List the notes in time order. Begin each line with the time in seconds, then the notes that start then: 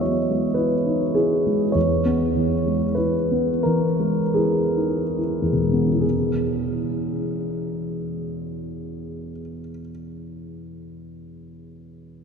Already playing: E2 F#3 G#3 B3 E4 D#5 E5
0.01 F#3 C#5
0.30 G#3
0.54 E4 B4
0.86 D#4
1.15 E4 G#4
1.47 G#3
1.72 E2 C#5
2.05 B3
2.36 E3
2.66 G#3
2.95 E4 B4
3.31 B3
3.63 E3 A#4
4.00 G#3
4.34 E4 G#4
4.77 D#4
5.19 E4
5.42 E2
5.53 B2
5.62 G#3
5.72 B3
5.83 C#4
5.93 E4
6.01 G#4